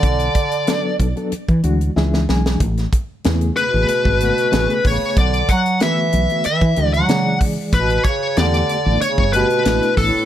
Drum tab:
HH |xxxxx-xxxxxx----|xxx-xxx-x-xxxxo-|xxxxx-xxxxxxx-o-|xxx-xxx-x-xxxxo-|
SD |----o-------oooo|-o--o-o-----o---|----o-------o---|----o-------o---|
BD |o-o---o--o------|o-o------o----o-|o-o------o----o-|o-o------o----o-|